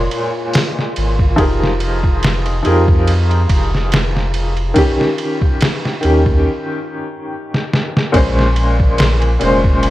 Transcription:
Already playing: A#2 G#3 F4 C#5
0.11 ride
0.53 snare, open hi-hat
0.79 snare
0.96 G#1, ride
1.19 kick
1.36 F1 F3 D#4 G4 G#4 A#4, kick, ride
1.63 snare
1.80 ride
2.03 kick
2.23 snare, ride
2.46 ride
2.63 F2 F3 D#4 G4 G#4, ride
2.67 A#4
2.88 kick
3.08 ride
3.31 ride
3.49 F1, kick, ride
3.75 snare
3.92 snare, ride
4.17 snare
4.34 ride
4.57 ride
4.74 D#3 C#4, kick, ride
4.78 G4
5.01 snare
5.18 ride
5.41 kick
5.61 snare, ride
5.85 snare
6.01 D#2 D#3 C#4, ride
6.05 G4
6.26 kick
7.54 snare
7.73 snare
7.97 snare
8.12 A#1 A#2 G#3 C#4, kick, ride
8.16 C5
8.39 snare
8.56 ride
8.80 kick
8.98 snare, ride
9.22 ride
9.39 F1 A#2 G#3 C#4 C5, ride
9.64 kick
9.83 ride

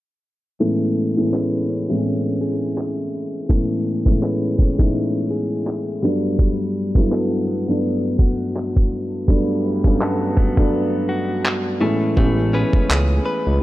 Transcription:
0.60 A2 E3 G#3 A3 B3 C#4
1.17 A2 E3 G#3 B3 C#4
1.33 C#4 G#4 B4, clap
1.69 C#4
1.89 A2 E3 G#3 B3 C4
1.98 C#4
2.41 G#4
2.78 clap
3.49 A2 E3 G#3 A3 B3 C#4, kick
4.06 A2 E3 G#3 B3 C#4, kick
4.22 C#4 G#4 B4, clap
4.58 C#4, kick
4.78 A2 E3 G#3 B3 D#4, kick
5.31 G#4
5.67 clap
6.02 G2 F#3 G3 A3 B3 D4
6.39 G3, kick
6.95 G2 F#3 A3 B3 E4, kick
7.11 B3 F#4 A4, clap
7.47 B3
7.68 G2 F#3 A3 B3 D4
8.19 F#4, kick
8.56 clap
8.76 kick
9.27 G2 F#3 G3 A3 B3 D4, kick
9.84 G2 F#3 A3 B3 C#4, kick
10.00 B3 F#4 A4, clap
10.37 B3, kick
10.57 G2 F#3 A3 B3 D4, kick
11.09 F#4
11.45 clap
11.80 A2 E3 G#3 A3 B3 C#4
12.16 A1 E3 G#3 A3 B3 C#4, kick
12.53 C#4 G#4 B4
12.73 kick
12.89 C#2 G#4, clap
13.26 B4
13.47 C#2

